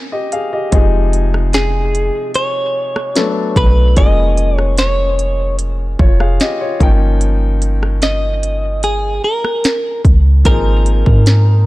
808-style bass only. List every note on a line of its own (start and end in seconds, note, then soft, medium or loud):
0.73 2.10 F1 loud
3.56 3.95 B1 loud
3.97 5.96 F1 loud
5.99 6.38 F1 loud
6.81 9.20 G1 loud
10.05 10.44 C#2 loud
10.46 11.04 G#1 loud
11.06 11.66 G#2 loud